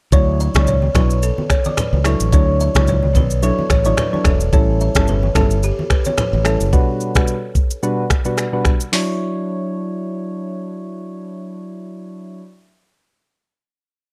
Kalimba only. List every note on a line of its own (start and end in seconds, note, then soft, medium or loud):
0.13 0.23 C#5 medium
0.40 0.55 E5 medium
0.56 0.64 D5 medium
0.68 0.78 C#5 medium
0.96 1.05 B4 medium
1.23 1.33 A4 medium
1.51 1.60 C#5 medium
1.66 1.74 D5 medium
1.78 1.88 B4 medium
2.06 2.16 A4 medium
2.34 2.43 C#5 medium
2.61 2.71 E5 medium
2.76 2.84 D5 medium
2.88 2.98 C#5 medium
3.16 3.26 B4 medium
3.43 3.53 A4 medium
3.71 3.86 C#5 medium
3.86 3.94 D5 medium
3.99 4.08 B4 medium
4.26 4.36 A4 medium
4.53 4.63 C#5 medium
4.81 4.91 E5 medium
4.96 5.04 C#5 medium
5.09 5.18 B4 medium
5.36 5.46 A4 medium
5.64 5.73 G4 medium
5.91 6.01 B4 medium
6.06 6.14 C#5 medium
6.19 6.28 B4 medium
6.46 6.56 A4 medium